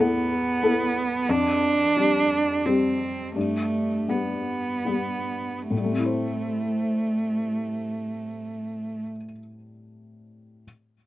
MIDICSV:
0, 0, Header, 1, 3, 480
1, 0, Start_track
1, 0, Key_signature, 0, "minor"
1, 0, Tempo, 661521
1, 930, Time_signature, 3, 2, 24, 8
1, 1419, Tempo, 710059
1, 2859, Tempo, 778210
1, 3339, Tempo, 837989
1, 4299, Tempo, 816327
1, 6960, End_track
2, 0, Start_track
2, 0, Title_t, "Cello"
2, 0, Program_c, 0, 42
2, 0, Note_on_c, 0, 59, 67
2, 945, Note_on_c, 0, 62, 81
2, 956, Note_off_c, 0, 59, 0
2, 1892, Note_on_c, 0, 60, 59
2, 1902, Note_off_c, 0, 62, 0
2, 2367, Note_off_c, 0, 60, 0
2, 2373, Note_on_c, 0, 57, 64
2, 2871, Note_on_c, 0, 59, 47
2, 2880, Note_off_c, 0, 57, 0
2, 3823, Note_off_c, 0, 59, 0
2, 3827, Note_on_c, 0, 57, 49
2, 5768, Note_off_c, 0, 57, 0
2, 6960, End_track
3, 0, Start_track
3, 0, Title_t, "Felt piano"
3, 0, Program_c, 1, 0
3, 0, Control_c, 1, 64, 127
3, 0, Note_on_c, 1, 40, 44
3, 0, Note_on_c, 1, 59, 35
3, 0, Note_on_c, 1, 69, 37
3, 1, Note_on_c, 1, 64, 34
3, 428, Note_off_c, 1, 59, 0
3, 428, Note_off_c, 1, 69, 0
3, 431, Note_off_c, 1, 64, 0
3, 458, Note_on_c, 1, 59, 37
3, 460, Note_on_c, 1, 64, 33
3, 462, Note_on_c, 1, 69, 42
3, 905, Note_off_c, 1, 59, 0
3, 906, Note_off_c, 1, 64, 0
3, 908, Note_off_c, 1, 69, 0
3, 934, Note_on_c, 1, 41, 49
3, 944, Control_c, 1, 64, 0
3, 951, Note_off_c, 1, 40, 0
3, 1046, Control_c, 1, 64, 127
3, 1406, Note_off_c, 1, 41, 0
3, 1426, Note_on_c, 1, 60, 32
3, 1427, Note_on_c, 1, 55, 36
3, 1430, Note_on_c, 1, 67, 41
3, 1863, Note_off_c, 1, 55, 0
3, 1863, Note_off_c, 1, 60, 0
3, 1865, Note_off_c, 1, 67, 0
3, 1894, Note_on_c, 1, 55, 36
3, 1894, Note_on_c, 1, 67, 37
3, 1898, Note_on_c, 1, 60, 35
3, 2341, Note_off_c, 1, 55, 0
3, 2341, Note_off_c, 1, 67, 0
3, 2343, Note_off_c, 1, 60, 0
3, 2366, Note_on_c, 1, 43, 44
3, 2378, Control_c, 1, 64, 0
3, 2491, Control_c, 1, 64, 127
3, 2845, Note_off_c, 1, 43, 0
3, 2856, Note_on_c, 1, 55, 27
3, 2859, Note_on_c, 1, 67, 33
3, 2861, Note_on_c, 1, 59, 29
3, 3313, Note_off_c, 1, 55, 0
3, 3314, Note_off_c, 1, 67, 0
3, 3315, Note_off_c, 1, 59, 0
3, 3331, Note_on_c, 1, 55, 24
3, 3336, Note_on_c, 1, 67, 26
3, 3337, Note_on_c, 1, 59, 25
3, 3797, Note_off_c, 1, 55, 0
3, 3799, Note_off_c, 1, 67, 0
3, 3800, Note_off_c, 1, 59, 0
3, 3821, Note_on_c, 1, 45, 29
3, 3838, Control_c, 1, 64, 0
3, 3860, Note_on_c, 1, 55, 29
3, 3899, Note_on_c, 1, 57, 29
3, 3940, Note_on_c, 1, 60, 28
3, 3947, Control_c, 1, 64, 127
3, 3980, Note_on_c, 1, 64, 28
3, 4022, Note_on_c, 1, 72, 28
3, 5762, Note_off_c, 1, 45, 0
3, 5803, Note_off_c, 1, 55, 0
3, 5843, Note_off_c, 1, 57, 0
3, 5885, Note_off_c, 1, 60, 0
3, 5926, Note_off_c, 1, 64, 0
3, 5969, Note_off_c, 1, 72, 0
3, 6711, Control_c, 1, 64, 0
3, 6960, End_track
0, 0, End_of_file